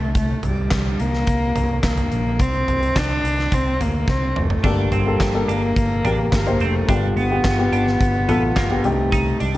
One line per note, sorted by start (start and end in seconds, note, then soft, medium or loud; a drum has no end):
0.00 0.33 C2 medium
0.00 0.16 A3 medium
0.15 0.42 A3 medium
0.15 kick loud
0.15 closed hi-hat medium
0.43 0.66 C2 medium
0.43 1.02 G3 medium
0.43 closed hi-hat medium
0.43 floor tom medium
0.71 0.94 C2 medium
0.71 kick medium
0.71 snare loud
0.71 clap medium
0.71 closed hi-hat medium
0.99 1.23 C2 medium
0.99 1.84 A#3 loud
0.99 closed hi-hat medium
1.14 snare soft
1.27 1.50 C2 medium
1.27 kick medium
1.27 closed hi-hat medium
1.56 1.79 C2 medium
1.56 closed hi-hat medium
1.56 floor tom medium
1.83 2.07 C2 medium
1.83 2.42 A#3 medium
1.83 kick loud
1.83 snare loud
1.83 clap medium
1.83 closed hi-hat medium
1.98 closed hi-hat soft
1.98 floor tom medium
2.12 2.40 A#1 medium
2.12 closed hi-hat medium
2.39 2.63 C2 medium
2.39 2.98 C4 medium
2.39 kick loud
2.39 closed hi-hat medium
2.68 2.91 C2 medium
2.68 closed hi-hat medium
2.68 floor tom medium
2.83 closed hi-hat soft
2.96 3.19 C2 medium
2.96 3.55 D4 loud
2.96 kick medium
2.96 snare medium
2.96 clap medium
2.96 closed hi-hat medium
3.24 3.47 C2 medium
3.24 closed hi-hat medium
3.39 snare soft
3.52 3.75 C2 medium
3.52 3.82 C4 loud
3.52 kick loud
3.52 closed hi-hat medium
3.80 4.03 D2 medium
3.80 4.11 A#3 medium
3.80 closed hi-hat medium
3.80 floor tom medium
4.08 4.31 C2 medium
4.08 4.39 C4 medium
4.08 kick medium
4.08 snare soft
4.36 4.59 F1 medium
4.36 4.96 A3 medium
4.36 mid tom medium
4.50 floor tom medium
4.64 4.87 G1 medium
4.64 5.44 G2 medium
4.64 5.44 D3 medium
4.64 4.95 A#3 medium
4.64 4.91 D4 medium
4.64 4.95 G4 medium
4.64 4.95 A4 medium
4.64 kick loud
4.64 splash medium
4.92 5.15 G1 medium
4.92 5.51 G3 medium
4.92 5.32 C4 medium
4.92 closed hi-hat medium
4.92 floor tom medium
5.06 5.26 A#3 medium
5.06 5.27 G4 medium
5.06 5.27 A4 medium
5.20 5.43 G1 medium
5.20 kick medium
5.20 snare loud
5.20 clap medium
5.20 closed hi-hat medium
5.34 5.86 A#3 medium
5.34 5.85 G4 medium
5.34 5.86 A4 medium
5.48 5.71 G1 medium
5.48 6.33 A#3 loud
5.48 5.62 D4 medium
5.48 closed hi-hat medium
5.76 5.99 G1 medium
5.76 kick loud
5.76 closed hi-hat medium
6.03 6.27 A1 medium
6.03 6.35 A#3 medium
6.03 6.18 D4 medium
6.03 6.35 G4 medium
6.03 6.35 A#4 medium
6.03 closed hi-hat medium
6.03 floor tom medium
6.32 6.55 G1 loud
6.32 6.63 A#3 medium
6.32 kick loud
6.32 snare loud
6.32 clap medium
6.32 closed hi-hat medium
6.47 6.77 A#3 medium
6.47 6.77 G4 medium
6.47 6.77 C5 medium
6.47 closed hi-hat soft
6.47 floor tom medium
6.60 6.83 F1 medium
6.60 6.92 A3 medium
6.60 6.74 C4 medium
6.60 closed hi-hat medium
6.88 7.11 G1 medium
6.88 7.69 G2 medium
6.88 7.69 D3 medium
6.88 7.19 G3 medium
6.88 7.19 B3 medium
6.88 7.15 D4 medium
6.88 7.19 F4 medium
6.88 7.19 G4 medium
6.88 kick loud
6.88 closed hi-hat medium
7.16 7.39 G1 medium
7.16 7.56 B3 medium
7.16 8.87 B3 medium
7.16 closed hi-hat medium
7.30 7.51 B3 medium
7.30 7.51 F4 medium
7.30 7.51 G4 medium
7.44 7.67 G1 medium
7.44 kick loud
7.44 snare loud
7.44 clap medium
7.44 closed hi-hat medium
7.59 8.10 B3 medium
7.59 8.10 F4 medium
7.59 8.10 G4 medium
7.72 7.95 G1 medium
7.72 7.86 D4 medium
7.72 closed hi-hat medium
7.87 snare soft
8.01 8.24 G1 medium
8.01 kick loud
8.01 closed hi-hat medium
8.28 8.52 A1 medium
8.28 8.59 B3 medium
8.28 8.42 B3 medium
8.28 8.59 F4 medium
8.28 8.60 A4 medium
8.28 closed hi-hat medium
8.28 floor tom medium
8.56 8.79 G1 medium
8.56 8.96 A#3 medium
8.56 kick medium
8.56 snare loud
8.56 clap medium
8.56 closed hi-hat medium
8.70 8.84 B3 medium
8.70 8.84 F4 medium
8.70 8.83 G4 medium
8.70 floor tom medium
8.84 9.31 C2 loud
8.84 9.57 G2 medium
8.84 9.43 A3 medium
8.84 9.41 C4 medium
8.84 9.41 D#4 medium
8.84 9.41 G4 medium
8.84 closed hi-hat medium
9.12 9.39 D#4 medium
9.12 kick loud
9.12 closed hi-hat medium
9.40 9.57 C2 medium
9.40 9.57 G3 medium
9.40 9.57 D4 medium
9.40 closed hi-hat medium
9.54 9.57 C4 medium